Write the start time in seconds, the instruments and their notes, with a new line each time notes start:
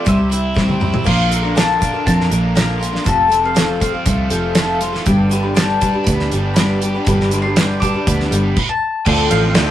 0.05 fingered electric bass C2, twelve-string acoustic guitar C3 E3 G3 C4 E4 C5, mandolin E5, kick, closed hi-hat
0.16 twelve-string acoustic guitar G3 C4 E4 C5
0.29 twelve-string acoustic guitar G3 C4 E4 C5, closed hi-hat
0.54 twelve-string acoustic guitar C3 E3 G3 C4 E4 C5, kick, snare
0.69 high tom
0.80 twelve-string acoustic guitar G3 C4 E4 C5, mid tom
0.92 twelve-string acoustic guitar G3 C4 E4 C5, floor tom
1.04 fingered electric bass A#1, twelve-string acoustic guitar A#2 F3 A#3 D4 F4 A#4, mandolin F5, kick, crash
1.29 overdriven electric guitar D3, twelve-string acoustic guitar A#3 D4 F4 A#4, closed hi-hat
1.42 twelve-string acoustic guitar A#3 D4 F4 A#4
1.55 twelve-string acoustic guitar A#2 F3 A#3 D4 F4 A#4, overdriven electric guitar D3, mandolin A5, snare, closed hi-hat
1.79 twelve-string acoustic guitar A#3 D4 F4 A#4, kick, closed hi-hat
1.93 twelve-string acoustic guitar A#3 D4 F4 A#4
2.05 fingered electric bass F2, overdriven electric guitar A#3, mandolin A5, kick, closed hi-hat
2.17 mandolin A#5, snare
2.30 fingered electric bass A#1, overdriven electric guitar D3, twelve-string acoustic guitar A#3 D4 F4 A#4, closed hi-hat
2.55 twelve-string acoustic guitar A#2 F3 A#3 D4 F4 A#4, mandolin A#5, snare, closed hi-hat
2.79 twelve-string acoustic guitar A#3 D4 F4 A#4, closed hi-hat
2.91 twelve-string acoustic guitar A#3 D4 F4 A#4
2.95 snare
3.04 fingered electric bass F1, overdriven electric guitar F2, twelve-string acoustic guitar F3 A3 C4 F4 A4, mandolin A5, kick, closed hi-hat
3.28 overdriven electric guitar C3, twelve-string acoustic guitar A3 C4 F4 A4, closed hi-hat
3.42 twelve-string acoustic guitar C4 F4 A4, mandolin F5
3.54 twelve-string acoustic guitar F3 A3 C4 F4 A4, snare, closed hi-hat
3.80 twelve-string acoustic guitar A3 C4 F4 A4, mandolin F5, kick, closed hi-hat
3.92 twelve-string acoustic guitar C4 F4 A4
4.06 fingered electric bass C2, overdriven electric guitar A3, kick, closed hi-hat
4.29 fingered electric bass F1, overdriven electric guitar F3, twelve-string acoustic guitar A3 C4 F4 A4, closed hi-hat
4.55 twelve-string acoustic guitar F3 A3 C4 F4 A4, snare, closed hi-hat
4.80 twelve-string acoustic guitar A3 C4 F4 A4, closed hi-hat
4.93 twelve-string acoustic guitar C4 F4 A4, snare
5.05 fingered electric bass G1, overdriven electric guitar G2, twelve-string acoustic guitar G3 D4 G4 B4, accordion G3 B3 D4 D5, mandolin G5, kick, closed hi-hat
5.29 overdriven electric guitar D3, twelve-string acoustic guitar G3 D4 G4 B4, closed hi-hat
5.42 twelve-string acoustic guitar D4 G4 B4
5.54 twelve-string acoustic guitar G3 D4 G4 B4, mandolin A5, snare, closed hi-hat
5.80 twelve-string acoustic guitar G3 D4 G4 B4, kick, closed hi-hat
5.93 twelve-string acoustic guitar D4 G4 B4
6.04 fingered electric bass D2, overdriven electric guitar B3, mandolin B5, kick, closed hi-hat
6.19 snare
6.31 fingered electric bass G1, twelve-string acoustic guitar G3 D4 G4 B4, closed hi-hat
6.54 twelve-string acoustic guitar G3 D4 G4 B4, overdriven electric guitar B3, mandolin B5, snare, closed hi-hat
6.82 twelve-string acoustic guitar G3 D4 G4 B4, closed hi-hat
6.94 twelve-string acoustic guitar D4 G4 B4
7.05 fingered electric bass G1, overdriven electric guitar G2, twelve-string acoustic guitar G3 D4 G4 B4, mandolin B5, kick, closed hi-hat
7.20 snare
7.31 overdriven electric guitar D3, twelve-string acoustic guitar G3 D4 G4 B4, closed hi-hat
7.42 twelve-string acoustic guitar G4 B4, mandolin C6
7.47 twelve-string acoustic guitar D4
7.56 twelve-string acoustic guitar G3 D4 G4 B4, snare, closed hi-hat
7.80 twelve-string acoustic guitar G3 D4 G4, mandolin D6, kick, closed hi-hat
7.84 twelve-string acoustic guitar B4
7.94 twelve-string acoustic guitar D4 G4 B4
8.07 fingered electric bass D2, overdriven electric guitar B3, kick, closed hi-hat
8.20 snare
8.31 fingered electric bass G1, twelve-string acoustic guitar G3 D4 G4 B4, closed hi-hat
8.56 mandolin B5, kick, crash
8.69 mandolin A5
9.05 fingered electric bass D2, twelve-string acoustic guitar D3 A3 C4 F4 C5, accordion F3 C4 D4 A4, upright piano F4 A4 C5 D5, mandolin G5, kick, crash
9.30 fingered electric bass A1, overdriven electric guitar F3, mandolin F5, ride
9.42 twelve-string acoustic guitar C4 F4 C5
9.54 fingered electric bass D2, twelve-string acoustic guitar D3 A3 C4 F4 C5, overdriven electric guitar F3, upright piano F4 A4 C5 D5, mandolin E5, snare, ride